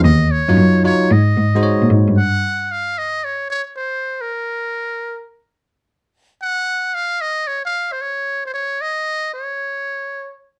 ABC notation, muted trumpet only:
X:1
M:4/4
L:1/16
Q:"Swing 16ths" 1/4=113
K:Abmix
V:1 name="Muted trumpet"
e2 d4 d2 e6 z2 | g4 f2 e2 d2 d2 c3 B- | B6- B z8 z | g4 f2 e2 d f2 c d3 c |
d2 e4 d8 z2 |]